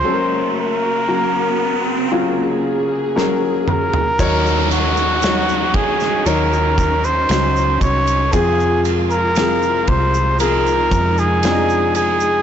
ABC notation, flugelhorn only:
X:1
M:4/4
L:1/16
Q:1/4=58
K:Ebdor
V:1 name="Flugelhorn"
c2 B6 z6 B2- | B2 G4 A2 B3 c3 d2 | A2 z B3 c2 B3 A3 A2 |]